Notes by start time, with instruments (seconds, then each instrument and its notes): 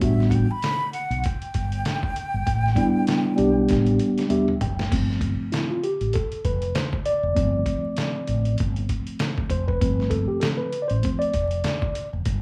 0.00 fretless electric bass A1, tine electric piano G3 B3 D4 F#4, flute E5, kick, closed hi-hat
0.20 snare
0.30 flute F#5, kick, closed hi-hat
0.35 flute G5
0.51 flute B5
0.62 snare, closed hi-hat
0.93 flute F#5, closed hi-hat
1.10 fretless electric bass B1, closed hi-hat
1.24 flute G5, kick, closed hi-hat
1.42 closed hi-hat
1.54 fretless electric bass G1, kick, closed hi-hat
1.72 closed hi-hat
1.85 snare, closed hi-hat
2.03 kick
2.16 closed hi-hat
2.34 fretless electric bass G1
2.47 fretless electric bass A1, kick, closed hi-hat
2.66 snare
2.75 tine electric piano G3 B3 D4 E4, kick, closed hi-hat
3.07 snare, closed hi-hat
3.36 fretless electric bass B1, tine electric piano G3 B3 D4 G4, closed hi-hat
3.69 fretless electric bass A1, kick, snare, closed hi-hat
3.86 closed hi-hat
3.99 closed hi-hat
4.18 snare, closed hi-hat
4.28 tine electric piano G3 B3 D4 G4 E5, closed hi-hat, mid tom
4.48 mid tom
4.61 fretless electric bass F#1, tine electric piano G5, closed hi-hat, floor tom
4.79 snare
4.91 fretless electric bass G1, tine electric piano F3 A3 C4, kick, closed hi-hat, crash
5.10 snare
5.21 kick, closed hi-hat
5.52 tine electric piano E4, snare, closed hi-hat
5.70 tine electric piano F4
5.83 tine electric piano G4, closed hi-hat
6.01 fretless electric bass A1, closed hi-hat
6.13 tine electric piano A4, kick, closed hi-hat
6.32 closed hi-hat
6.44 fretless electric bass F1, tine electric piano B4, kick, closed hi-hat
6.62 closed hi-hat
6.75 tine electric piano C5, snare, closed hi-hat
6.93 kick
7.06 tine electric piano D5, closed hi-hat
7.23 fretless electric bass F1
7.35 fretless electric bass G1, tine electric piano F3 A3 C4, kick, closed hi-hat
7.66 kick, closed hi-hat
7.97 snare, closed hi-hat
8.27 fretless electric bass A1, closed hi-hat
8.45 closed hi-hat
8.58 fretless electric bass G1, kick, closed hi-hat
8.76 closed hi-hat
8.89 kick, closed hi-hat
9.07 closed hi-hat
9.19 snare, closed hi-hat
9.38 kick
9.50 fretless electric bass F1, tine electric piano C5, kick, closed hi-hat
9.68 tine electric piano B4, kick
9.80 fretless electric bass G1, tine electric piano F3 A3 C4, kick, closed hi-hat
10.00 snare
10.10 tine electric piano A4, kick, closed hi-hat
10.28 tine electric piano G4
10.40 tine electric piano A4, snare, closed hi-hat
10.57 tine electric piano B4
10.73 closed hi-hat
10.82 tine electric piano D5
10.88 fretless electric bass A1, tine electric piano C5, closed hi-hat
11.03 tine electric piano F3 A3 C4, kick, closed hi-hat
11.19 tine electric piano D5, closed hi-hat
11.34 fretless electric bass F1, kick, closed hi-hat
11.51 closed hi-hat
11.64 snare, closed hi-hat
11.82 kick
11.95 closed hi-hat
12.13 fretless electric bass F1
12.25 fretless electric bass G1, kick, closed hi-hat